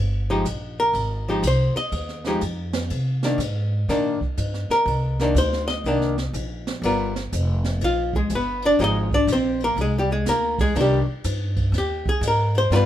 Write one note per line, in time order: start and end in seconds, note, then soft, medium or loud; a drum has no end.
0.00 0.44 G1 medium
0.30 0.45 F3 medium
0.30 0.45 G#3 medium
0.30 0.45 D#4 medium
0.30 0.45 G4 medium
0.45 0.93 A#1 medium
0.45 hi-hat pedal medium
0.45 ride medium
0.80 1.29 A#4 loud
0.93 1.42 G#1 medium
0.93 ride medium
1.29 1.43 F3 medium
1.29 1.43 G#3 medium
1.29 1.44 D#4 medium
1.29 1.43 G4 medium
1.43 1.73 C2 medium
1.43 hi-hat pedal medium
1.43 ride medium
1.47 1.77 C5 medium
1.75 2.27 D#5 loud
1.75 muted upright bass stroke soft
1.75 ride soft
1.92 2.40 D#2 medium
1.92 ride medium
2.09 snare soft
2.24 2.41 F3 medium
2.24 2.41 G#3 medium
2.24 2.41 D#4 medium
2.24 2.41 G4 medium
2.24 snare soft
2.41 2.89 F2 medium
2.41 hi-hat pedal soft
2.41 ride medium
2.73 snare medium
2.73 ride medium
2.90 3.37 C3 medium
2.90 ride medium
3.23 3.39 D#3 medium
3.23 3.39 A#3 medium
3.23 3.39 D4 medium
3.23 snare medium
3.38 3.86 G#2 loud
3.38 hi-hat pedal medium
3.38 ride medium
3.88 4.19 A#2 medium
3.88 4.18 D#3 medium
3.88 4.19 A#3 medium
3.88 4.19 D4 medium
3.88 snare soft
3.88 ride medium
4.21 muted upright bass stroke soft
4.21 kick soft
4.37 4.68 G2 medium
4.37 hi-hat pedal medium
4.37 ride medium
4.54 snare soft
4.69 5.32 A#4 medium
4.69 muted upright bass stroke soft
4.69 snare medium
4.86 5.34 C2 medium
4.86 ride medium
5.20 5.35 D#3 medium
5.20 5.35 A#3 medium
5.20 5.36 D4 medium
5.20 snare soft
5.35 5.83 D2 medium
5.35 5.67 C5 medium
5.35 hi-hat pedal medium
5.35 ride medium
5.53 snare soft
5.68 6.30 D#5 medium
5.68 snare soft
5.84 6.32 C2 medium
5.84 6.15 D#3 medium
5.84 6.15 A#3 medium
5.84 ride medium
5.88 6.16 D4 medium
6.01 snare soft
6.18 snare soft
6.33 6.81 A#1 medium
6.33 hi-hat pedal soft
6.33 ride medium
6.67 snare medium
6.82 7.30 G1 medium
6.82 7.13 G3 medium
6.82 7.13 B3 medium
6.82 7.13 F4 medium
6.82 7.13 A#4 medium
6.82 ride medium
7.16 snare medium
7.32 7.80 F1 medium
7.32 hi-hat pedal medium
7.32 ride medium
7.64 snare soft
7.64 ride soft
7.81 8.29 A#1 medium
7.81 8.14 F5 medium
7.81 ride medium
7.85 8.14 F4 medium
8.13 8.31 G#3 medium
8.13 8.31 G#4 medium
8.13 kick medium
8.30 8.78 G1 medium
8.30 hi-hat pedal medium
8.30 ride medium
8.35 8.64 B3 medium
8.35 8.64 B4 medium
8.62 8.80 D4 medium
8.62 ride medium
8.66 8.80 D5 medium
8.79 9.27 G#1 medium
8.79 9.09 F3 medium
8.79 9.09 G#3 medium
8.79 9.09 D#4 medium
8.79 8.83 G4 medium
8.79 ride medium
8.84 9.13 D#5 loud
9.11 9.29 D4 medium
9.11 9.29 D5 medium
9.11 kick medium
9.27 9.75 A#1 medium
9.27 hi-hat pedal medium
9.27 ride medium
9.32 9.62 C4 medium
9.32 9.62 C5 medium
9.60 9.78 A#4 medium
9.60 ride soft
9.65 9.79 A#3 medium
9.77 10.24 C2 medium
9.77 ride medium
9.81 9.95 G#3 medium
9.81 9.95 G#4 medium
9.98 10.12 G3 medium
9.98 10.12 G4 medium
10.12 10.27 G#3 medium
10.12 10.27 G#4 medium
10.26 10.74 D2 medium
10.26 10.59 A#3 medium
10.26 10.59 A#4 medium
10.26 snare soft
10.26 hi-hat pedal medium
10.26 ride medium
10.59 10.75 G#3 medium
10.59 10.76 G#4 medium
10.59 kick medium
10.59 ride medium
10.75 11.05 C2 medium
10.75 11.04 D#3 medium
10.75 10.81 A#3 medium
10.75 11.05 D4 medium
10.75 ride medium
10.81 10.99 G3 medium
10.81 10.98 G4 medium
11.07 muted upright bass stroke soft
11.24 11.71 G2 medium
11.24 hi-hat pedal medium
11.24 ride medium
11.56 kick soft
11.56 ride soft
11.72 12.20 D#2 medium
11.72 snare soft
11.72 ride medium
11.78 12.07 G4 medium
12.06 12.23 G#4 medium
12.06 kick medium
12.21 12.69 G#2 medium
12.21 hi-hat pedal medium
12.21 ride medium
12.28 12.56 A#4 medium
12.55 12.72 C5 loud
12.55 ride medium
12.70 12.86 G2 medium
12.70 12.86 G3 medium
12.70 12.86 B3 medium
12.70 12.86 F4 medium
12.70 12.75 A#4 medium
12.70 snare soft
12.70 ride medium
12.76 12.86 B4 medium